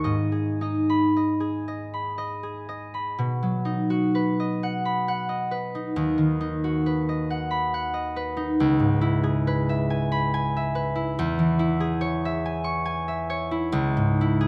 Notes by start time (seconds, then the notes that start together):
Already playing: D#2 G4 C#6
0.04 G#2 D#5
0.32 G#4
0.61 D#4 D#5
0.90 B5
1.17 D#5
1.40 G#4
1.68 D#5
1.94 B5
2.18 D#5
2.43 G#4
2.69 D#5
2.94 B5
3.19 B2
3.43 F#3
3.65 D#4
3.90 F#4
4.15 B4
4.40 D#5
4.63 F#5
4.85 B5
5.08 F#5
5.29 D#5
5.51 B4
5.75 D#4
5.96 D#2
6.18 D#3
6.41 D#4
6.64 F#4
6.86 B4
7.09 D#5
7.30 F#5
7.51 B5
7.74 F#5
7.94 D#5
8.16 B4
8.37 D#4
8.60 C#2
8.79 G#2
9.01 E4
9.24 G#4
9.47 B4
9.69 E5
9.90 G#5
10.12 B5
10.34 G#5
10.57 E5
10.75 B4
10.95 E4
11.19 E2
11.39 E3
11.59 E4
11.80 G#4
12.01 C#5
12.25 E5
12.46 G#5
12.64 C#6
12.86 G#5
13.08 E5
13.30 C#5
13.51 E4
13.72 C#2
13.97 G#2
14.21 E4
14.41 G#4